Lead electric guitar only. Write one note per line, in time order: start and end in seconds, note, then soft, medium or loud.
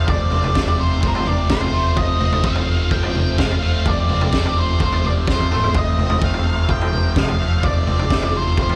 0.08 0.81 D5 medium
0.80 1.01 C5 medium
1.02 1.07 C5 loud
1.07 1.13 A#4 medium
1.14 1.26 C5 medium
1.27 1.51 D5 medium
1.50 1.98 C5 medium
1.97 2.45 D#5 medium
2.46 2.93 F5 medium
2.92 3.40 G5 loud
3.38 3.87 F5 medium
3.88 4.60 D5 medium
4.58 4.81 C5 medium
4.83 5.05 C5 medium
5.05 5.11 D5 medium
5.31 5.78 C5 medium
5.77 6.24 D#5 medium
6.24 6.71 F5 medium
6.70 7.13 G5 loud
7.19 7.64 F5 medium
7.64 8.36 D5 medium
8.37 8.57 C5 medium
8.61 8.76 C5 loud